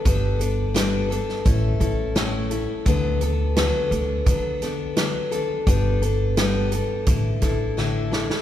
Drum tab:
HH |x-x-x-x-x-x-x-x-|x-x-x-x-x-x-x-x-|x-x-x-x-x-x-----|
SD |----o--o----o---|----o-----o-o---|----o-----o-o-oo|
BD |o-------o-o-----|o-------o-------|o-------o-o-----|